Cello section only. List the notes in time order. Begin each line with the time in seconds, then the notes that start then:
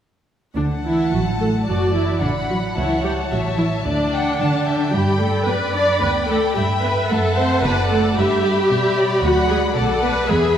0.56 D3
0.84 E3
1.11 F#3
1.38 A3
1.66 F#3
1.93 E3
2.21 D3
2.49 F#3
2.77 E3
3.04 G3
3.31 F#3
3.58 E3
3.85 D3
4.93 G3
5.19 A3
5.47 B3
5.74 D4
6.02 B3
6.29 A3
6.55 G3
6.82 B3
7.10 A3
7.37 C4
7.64 B3
7.91 A3
8.17 G3
9.22 F#3
9.49 G#3
9.75 A3
10.02 B3
10.28 G#3